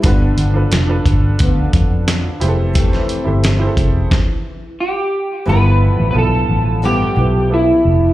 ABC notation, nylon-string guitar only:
X:1
M:4/4
L:1/8
Q:1/4=88
K:Gmix
V:1 name="Nylon-string guitar" clef=bass
[G,,D,F,B,D]4 [D,F,B,D]3 [E,A,C] | [F,,C,E,A,C]4 z4 | [G,,D,F,B,E]4 [G,,D,F,B,E] [F,B,E]3 |]